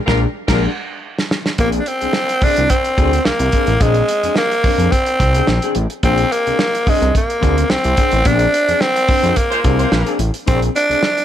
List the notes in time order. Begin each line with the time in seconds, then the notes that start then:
0.06 A#1 G3 G#3 D4 F4 G4 A#4, kick, snare
0.48 A#1 G3 G#3 D4 F4 G4 A#4, kick, snare, crash
1.19 snare
1.31 snare
1.46 snare
1.58 A#1 A#3 C4 D4 G#4, kick, closed hi-hat
1.72 closed hi-hat
1.80 D4
1.86 C4, muted hollow-body jazz guitar stroke, closed hi-hat
2.01 C2 C4 D4 G#4, closed hi-hat
2.13 muted hollow-body jazz guitar stroke, snare
2.29 muted hollow-body jazz guitar stroke, closed hi-hat
2.41 C2 C4 D4 G#4, kick, open hi-hat
2.56 C2 C4 D4 A#4, closed hi-hat
2.70 C4, kick, closed hi-hat
2.85 muted hollow-body jazz guitar stroke, closed hi-hat
2.98 D2 C4 D4 G#4, kick, closed hi-hat
3.13 muted hollow-body jazz guitar stroke, closed hi-hat
3.25 C2 A#3, muted hollow-body jazz guitar stroke, snare
3.39 C2, closed hi-hat
3.52 C4 D4 G#4, kick, closed hi-hat
3.67 A1, muted hollow-body jazz guitar stroke, closed hi-hat
3.81 A#1 G#3 C4 D4 G#4, kick, closed hi-hat
3.94 closed hi-hat
4.08 muted hollow-body jazz guitar stroke, closed hi-hat
4.24 F2 C4 D4 G#4, closed hi-hat
4.36 A#3, muted hollow-body jazz guitar stroke, snare
4.51 muted hollow-body jazz guitar stroke, closed hi-hat
4.64 F2 C4 D4 A#4, kick, open hi-hat
4.78 F2 C4 D4 G#4, closed hi-hat
4.92 C4, muted hollow-body jazz guitar stroke, kick, closed hi-hat
5.06 muted hollow-body jazz guitar stroke, closed hi-hat
5.20 C2, kick, snare, closed hi-hat
5.34 C4 D4 G#4, closed hi-hat
5.47 A#1, muted hollow-body jazz guitar stroke, snare
5.62 C4 D4 G#4, closed hi-hat
5.75 A1, muted hollow-body jazz guitar stroke, closed hi-hat
5.90 muted hollow-body jazz guitar stroke, closed hi-hat
6.03 A#1 C4 D4 G#4, kick, closed hi-hat
6.18 closed hi-hat
6.32 A#3, muted hollow-body jazz guitar stroke, closed hi-hat
6.46 C2 C4 D4 G#4, closed hi-hat
6.59 muted hollow-body jazz guitar stroke, snare
6.75 muted hollow-body jazz guitar stroke, closed hi-hat
6.86 C2 G#3 C4 D4 G#4, kick, open hi-hat
7.01 C2 C4 D4 A#4, closed hi-hat
7.15 A#3, kick, closed hi-hat
7.29 muted hollow-body jazz guitar stroke, closed hi-hat
7.41 D2 C4 D4 G#4, kick, snare, closed hi-hat
7.56 muted hollow-body jazz guitar stroke, closed hi-hat
7.69 C2 C4, muted hollow-body jazz guitar stroke, snare
7.84 C2, closed hi-hat
7.97 C4 D4 G#4, kick, closed hi-hat
8.12 A1, muted hollow-body jazz guitar stroke, closed hi-hat
8.25 A#1 C4 D4 G#4, kick, closed hi-hat
8.39 closed hi-hat
8.53 muted hollow-body jazz guitar stroke, closed hi-hat
8.68 F2 C4 D4 G#4, closed hi-hat
8.81 C4, snare
8.96 muted hollow-body jazz guitar stroke, closed hi-hat
9.08 F2 C4 D4 A#4, kick, open hi-hat
9.23 F2 C4 D4 G#4, closed hi-hat
9.36 A#3, muted hollow-body jazz guitar stroke, kick, closed hi-hat
9.50 G#3 F4 C5, muted hollow-body jazz guitar stroke, closed hi-hat
9.64 C2 C4 D4 G#4, kick, closed hi-hat
9.78 G#3 F4 C5, muted hollow-body jazz guitar stroke, closed hi-hat
9.91 A#1, muted hollow-body jazz guitar stroke, snare
10.06 C4 D4 G#4, closed hi-hat
10.19 A1, muted hollow-body jazz guitar stroke, closed hi-hat
10.33 muted hollow-body jazz guitar stroke, closed hi-hat
10.46 A#1 C4 D4 G#4, kick, closed hi-hat
10.62 closed hi-hat
10.75 D4, muted hollow-body jazz guitar stroke, closed hi-hat
10.90 C2 C4 D4 G#4, closed hi-hat
11.03 snare
11.18 muted hollow-body jazz guitar stroke, closed hi-hat